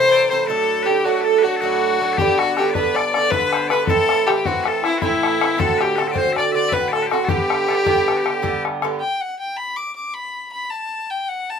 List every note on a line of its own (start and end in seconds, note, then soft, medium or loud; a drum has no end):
0.00 0.29 C3 medium
0.00 0.30 E3 medium
0.00 0.31 A3 medium
0.00 0.32 E4 medium
0.00 0.12 C5 medium
0.00 0.29 C5 loud
0.12 0.30 D5 medium
0.30 0.48 C3 medium
0.30 0.49 E3 medium
0.30 0.49 A3 medium
0.30 0.50 E4 medium
0.30 0.48 C5 medium
0.30 0.47 C5 medium
0.48 0.86 A2 medium
0.48 0.86 F#3 medium
0.48 0.87 A3 medium
0.48 0.89 D4 medium
0.48 0.83 A4 loud
0.48 0.87 A4 medium
0.83 1.06 G4 medium
0.83 0.87 B4 medium
0.87 1.05 A2 medium
0.87 1.05 F#3 medium
0.87 1.04 A3 medium
0.87 1.04 D4 medium
0.87 1.04 G4 medium
1.04 1.45 A2 soft
1.04 1.44 F#3 soft
1.04 1.44 A3 medium
1.04 1.43 D4 medium
1.04 1.21 F#4 medium
1.04 1.25 F#4 medium
1.21 1.38 A4 medium
1.21 1.24 B4 medium
1.25 1.45 A4 medium
1.38 1.42 B4 medium
1.42 1.62 F#3 soft
1.42 1.62 A3 soft
1.42 1.61 D4 soft
1.42 1.56 F#4 medium
1.42 1.60 F#4 medium
1.56 1.61 A4 medium
1.61 1.99 A2 medium
1.61 2.00 F#3 medium
1.61 2.01 A3 medium
1.61 2.13 F#4 medium
1.61 2.20 F#4 medium
1.65 2.02 D4 medium
2.00 2.18 A2 soft
2.00 2.19 F#3 medium
2.00 2.19 A3 medium
2.00 2.20 D4 medium
2.13 2.17 A4 medium
2.17 2.57 G2 medium
2.17 2.58 D3 medium
2.17 2.59 B3 medium
2.17 2.38 G4 medium
2.17 2.39 G4 medium
2.17 bodhran medium
2.22 2.59 D4 medium
2.38 2.56 F#4 medium
2.38 2.70 F#4 medium
2.38 bodhran medium
2.57 2.76 G2 medium
2.57 2.76 D3 medium
2.57 2.75 B3 medium
2.57 2.74 G4 medium
2.57 bodhran medium
2.62 2.74 D4 medium
2.70 2.96 B4 medium
2.70 2.74 D5 medium
2.74 3.15 G2 soft
2.74 3.15 D3 medium
2.74 3.14 B3 medium
2.74 3.14 D4 medium
2.74 2.96 B4 medium
2.74 bodhran medium
2.86 bodhran soft
2.95 3.12 D5 medium
2.95 3.32 D5 medium
2.95 bodhran medium
3.13 3.32 B3 soft
3.13 3.32 D4 soft
3.13 3.32 D5 medium
3.13 bodhran medium
3.17 3.32 D3 soft
3.31 3.69 G2 medium
3.31 3.70 D3 medium
3.31 3.71 B3 medium
3.31 3.72 D4 medium
3.31 3.70 B4 loud
3.31 3.54 B4 medium
3.31 bodhran medium
3.53 3.68 C5 medium
3.53 bodhran medium
3.68 3.88 G2 medium
3.68 3.89 D3 medium
3.68 3.87 B4 medium
3.68 3.90 B4 medium
3.68 3.72 D5 medium
3.68 bodhran medium
3.73 3.89 B3 medium
3.73 3.90 D4 medium
3.87 4.26 A2 medium
3.87 4.27 E3 medium
3.87 4.29 C4 medium
3.87 4.28 E4 medium
3.87 4.28 A4 loud
3.87 4.28 A4 medium
3.87 bodhran medium
4.09 bodhran medium
4.27 4.45 A2 medium
4.27 4.46 E3 medium
4.27 4.46 C4 medium
4.27 4.45 E4 medium
4.27 4.47 G4 medium
4.27 4.46 G4 medium
4.27 bodhran medium
4.45 4.85 A2 medium
4.45 4.85 E3 medium
4.45 4.86 C4 medium
4.45 4.84 E4 medium
4.45 4.68 F#4 medium
4.45 4.64 F#4 medium
4.45 bodhran medium
4.56 bodhran soft
4.64 4.84 A4 medium
4.64 4.68 B4 medium
4.64 bodhran medium
4.68 4.85 A4 medium
4.84 5.02 C4 soft
4.84 5.01 E4 medium
4.84 4.98 E4 medium
4.84 5.02 E4 medium
4.84 bodhran medium
4.88 5.02 E3 soft
4.98 5.60 E4 medium
4.98 5.02 F#4 medium
5.02 5.39 A2 medium
5.02 5.40 E3 medium
5.02 5.42 C4 medium
5.02 5.61 E4 medium
5.02 5.42 E4 medium
5.02 bodhran medium
5.23 bodhran medium
5.40 5.56 A2 medium
5.40 5.58 E3 medium
5.40 5.58 C4 medium
5.40 5.59 E4 medium
5.40 bodhran medium
5.57 5.96 A2 medium
5.57 5.99 D3 medium
5.57 5.98 C4 medium
5.57 5.98 F#4 medium
5.57 5.83 A4 loud
5.57 5.78 A4 medium
5.57 bodhran medium
5.78 6.00 G4 medium
5.78 5.96 G4 medium
5.78 5.82 B4 medium
5.78 bodhran medium
5.96 6.15 A2 medium
5.96 6.14 D3 medium
5.96 6.14 A4 medium
5.96 6.00 B4 medium
5.96 bodhran medium
6.00 6.13 C4 medium
6.00 6.12 F#4 medium
6.00 6.08 A4 medium
6.08 6.18 D5 medium
6.08 6.11 E5 medium
6.13 6.55 A2 medium
6.13 6.55 D3 medium
6.13 6.53 C4 medium
6.13 6.51 F#4 medium
6.13 6.35 C5 medium
6.13 bodhran medium
6.18 6.33 C5 medium
6.27 bodhran soft
6.33 6.37 E5 medium
6.33 bodhran medium
6.37 6.52 D5 medium
6.37 6.53 D5 medium
6.52 6.71 D3 soft
6.52 6.71 C4 soft
6.52 6.71 F#4 soft
6.52 6.74 D5 medium
6.52 6.69 D5 medium
6.52 6.55 E5 medium
6.69 7.08 A2 medium
6.69 7.11 D3 medium
6.69 7.11 C4 medium
6.69 6.94 B4 medium
6.69 6.73 E5 medium
6.69 bodhran medium
6.73 7.12 F#4 medium
6.73 6.88 B4 medium
6.88 7.02 A4 medium
6.88 6.92 D5 medium
6.93 7.11 A4 medium
6.93 bodhran medium
7.02 7.06 B4 soft
7.06 7.28 A2 soft
7.06 7.12 G4 soft
7.11 7.28 D3 medium
7.11 7.29 C4 medium
7.11 7.25 F#4 medium
7.11 7.31 F#4 medium
7.11 7.30 F#4 medium
7.11 bodhran medium
7.25 7.66 G2 medium
7.25 7.29 A4 medium
7.25 bodhran medium
7.29 7.68 D3 medium
7.29 7.69 B3 medium
7.29 7.70 G4 medium
7.29 8.65 G4 loud
7.29 7.70 G4 medium
7.50 bodhran medium
7.67 7.86 G2 medium
7.67 7.85 D3 medium
7.67 7.85 B3 medium
7.67 7.84 G4 medium
7.67 7.76 A4 soft
7.67 bodhran medium
7.76 8.17 G4 medium
7.85 8.26 G2 medium
7.85 8.28 D3 medium
7.85 8.25 B3 medium
7.85 8.23 G4 medium
7.85 bodhran medium
7.97 bodhran soft
8.08 bodhran soft
8.17 8.19 F#4 soft
8.17 8.64 G4 medium
8.24 8.42 D3 soft
8.24 8.43 B3 soft
8.24 8.43 G4 soft
8.24 bodhran medium
8.42 8.81 G2 medium
8.42 8.83 D3 medium
8.42 8.83 B3 medium
8.42 8.83 G4 medium
8.42 bodhran medium
8.65 bodhran medium
8.82 9.00 G2 medium
8.82 9.01 D3 medium
8.82 9.01 B3 medium
8.82 9.02 G4 medium
8.82 bodhran medium
9.00 9.22 G5 medium
9.20 9.38 F#5 medium
9.39 9.58 G5 medium
9.56 9.78 B5 medium
9.76 9.95 D6 medium
9.95 10.15 D6 medium
10.14 10.52 B5 medium
10.52 10.72 B5 medium
10.70 11.12 A5 medium
11.10 11.30 G5 medium
11.28 11.51 F#5 medium
11.50 11.60 A5 medium